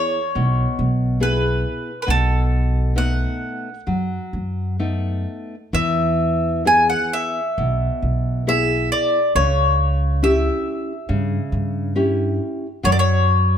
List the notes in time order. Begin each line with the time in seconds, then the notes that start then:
Already playing: B3 E4 G#4 C#5
0.35 B1 B2
0.79 B1
1.20 B3 E4 G#4 B4
2.02 B4
2.07 B1 B2 A4
2.96 A3 B3 D#4 F#5
3.87 F#2 F#3
4.33 F#2
4.79 A3 B3 D#4
5.73 E2 E3 E5
6.65 B3 E4 G#4 G#5
6.90 F#5
7.13 E5
7.58 B1 B2
8.02 B1
8.47 B3 E4 G#4 E5
8.92 D5
9.35 C#2 C#3 C#5
10.22 C#4 E4 G4 E5
11.09 G2 C#3
11.52 G2
11.96 C#4 E4 G4
12.83 F#2 F#3 C#5
12.92 D5
12.99 C#5